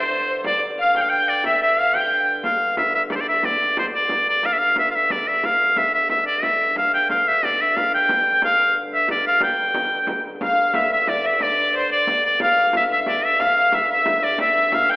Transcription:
Already playing: G2 D3 C5
0.11 frame drum
0.29 C5
0.44 D5, frame drum
0.78 F5, frame drum
0.95 G5, frame drum
1.02 F5
1.10 G5, frame drum
1.29 D5
1.44 E5, frame drum
1.62 E5
1.79 F5
1.94 G5, frame drum
2.10 frame drum
2.44 G2 D3 F5, frame drum
2.77 E5, frame drum
2.94 E5, frame drum
3.10 D5, frame drum
3.16 C5
3.20 D5
3.29 E5
3.43 D5, frame drum
3.77 C5, frame drum
3.93 D5, frame drum
4.09 frame drum
4.29 D5
4.43 F5, frame drum
4.53 E5
4.58 F5
4.76 E5, frame drum
4.91 F5, frame drum
4.95 E5
5.10 D5, frame drum
5.28 E5
5.43 F5, frame drum
5.60 frame drum
5.76 E5, frame drum
5.93 E5, frame drum
6.09 E5, frame drum
6.27 D5
6.43 G2 D3 E5, frame drum
6.76 F5, frame drum
6.93 G5, frame drum
7.10 F5, frame drum
7.28 E5
7.43 D5, frame drum
7.61 E5
7.77 F5, frame drum
7.93 G5, frame drum
8.09 frame drum
8.42 F5, frame drum
8.92 E5, frame drum
9.08 D5, frame drum
9.27 F5
9.40 G5, frame drum
9.57 frame drum
9.74 frame drum
9.91 frame drum
10.07 frame drum
10.41 G2 D3 F5, frame drum
10.74 E5, frame drum
10.90 E5, frame drum
11.07 D5, frame drum
11.25 E5
11.40 D5, frame drum
11.58 D5
11.75 C5
11.90 D5, frame drum
12.07 frame drum
12.26 D5
12.40 F5, frame drum
12.73 E5, frame drum
12.90 E5, frame drum
13.06 D5, frame drum
13.24 E5
13.40 F5, frame drum
13.56 F5
13.72 E5, frame drum
13.90 E5
14.06 frame drum
14.23 D5
14.38 G2 D3 E5, frame drum
14.72 F5, frame drum
14.89 G5, frame drum

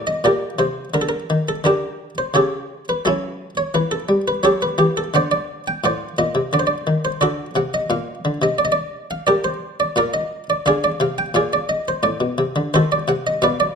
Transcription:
Already playing: A2
0.07 D#5
0.24 A#2 G4 A#4 D5
0.59 C3 C5
0.94 D3 A#4
1.01 A4
1.09 A#4
1.30 D#3
1.49 A4
1.64 D3 D4 G4 A#4
2.18 C5
2.34 C#3 G4 A4 C#5
2.89 B4
3.05 F#3 C#4 E4 A4
3.57 C#5
3.74 E3 B4
3.91 A4
4.09 G3
4.28 B4
4.43 F#3 G4 A4 C#5
4.62 B4
4.78 E3 G4
4.97 A4
5.14 D3 C5 D5 F#5
5.31 D5
5.68 G5
5.84 A2 C5 D5 F#5
6.18 A#2 D#5
6.35 C3
6.53 D3 D5
6.59 C5
6.67 D5
6.87 D#3
7.05 C5
7.21 D3 F#4 A4 D5
7.55 C3 F#5
7.74 D#5
7.90 A#2 F5
8.25 D3
8.42 C3 D#5
8.58 D5
8.65 D#5
8.72 D5
9.11 F5
9.27 G4 A#4 D5
9.44 C5
9.80 D5
9.96 A#2 A#4 D5 F5
10.14 D#5
10.50 D5
10.66 D3 G#4 D5 F5
10.84 D5
11.00 C3 F5
11.18 G5
11.34 A#2 G#4 D5 F5
11.53 D5
11.69 D#5
11.88 C5
12.03 A2 D5
12.20 B2
12.38 C3
12.56 D3
12.74 D#3 F#4 A4 C5
12.92 D5
13.08 C3 F#5
13.27 D#5
13.42 B2 B4 D5 F5
13.60 D5

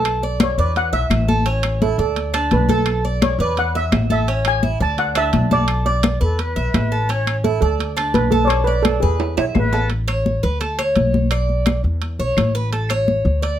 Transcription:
Already playing: B1 A4
0.05 high conga, high timbale, claves
0.23 D5, high conga
0.40 C#5, high conga, high timbale, claves
0.58 E2 B4 D5, high conga
0.76 F#5, high conga, high timbale
0.93 B1 E5, high conga
1.10 A1, high conga, high timbale, claves
1.28 A4, high conga
1.46 C#4, high conga, high timbale
1.63 high conga, high timbale, claves
1.82 E4 A4, high conga
1.98 D2 A4 D5, high conga
2.16 high conga, high timbale
2.34 D4, high conga, high timbale, claves
2.51 B1 B4, high conga, high timbale
2.69 A4, high conga
2.86 high conga, high timbale, claves
3.05 D5, high conga
3.22 C#5, high conga, high timbale, claves
3.39 E2 B4 D5, high conga
3.57 F#5, high conga, high timbale
3.75 E5, high conga
3.92 A1, high conga, high timbale, low timbale, claves
4.10 A4 E5, high conga
4.28 C#4, high conga, high timbale
4.45 G#5, high conga, high timbale, claves
4.63 E4, high conga
4.80 D2 D5 A5, high conga
4.98 F#5, high conga, high timbale
5.15 D4 E5, high conga, high timbale, claves
5.33 B1, high conga, high timbale
5.51 A4 D5, high conga
5.68 high timbale, claves
5.86 D5, high conga
6.03 high conga, high timbale, claves
6.21 E2 A4 B4, high conga
6.39 B4, high conga, high timbale
6.56 B1 E5, high conga
6.74 A1, high conga, high timbale, low timbale, claves
6.92 A4
7.09 C#4 C#5, high conga, high timbale
7.27 high conga, high timbale, claves
7.44 E4 A4, high conga
7.61 D2 A4 D5, high conga
7.79 high conga, high timbale
7.97 D4, high conga, high timbale, claves
8.14 B1 B4, high conga, high timbale
8.31 A4, high conga
8.45 C#5 D5
8.50 high conga, high timbale, claves
8.64 B4 D5, high conga
8.83 A4, high conga, high timbale, claves
9.00 E2 G#4 B4, high conga
9.20 high conga, high timbale
9.37 B1 C#5 E5, high conga, high timbale
9.55 A1 B4, high conga, low timbale, claves
9.73 A4, low timbale
9.90 high conga, high timbale
10.08 C#5, high conga, high timbale, claves
10.26 high conga
10.43 D2 B4, high conga
10.61 A4, high conga, high timbale
10.79 C#5, high conga, high timbale, claves
10.96 B1, high conga, high timbale
11.14 high conga
11.31 D5, high conga, high timbale, claves
11.49 high conga
11.66 high conga, high timbale, claves
11.84 E2, high conga
12.02 high conga, high timbale
12.19 B1 C#5, high conga
12.37 A1, high conga, high timbale, claves
12.55 B4
12.73 A4, high conga, high timbale
12.89 C#5, high conga, high timbale, claves
13.08 high conga
13.25 D2, high conga
13.42 D5, high conga, high timbale

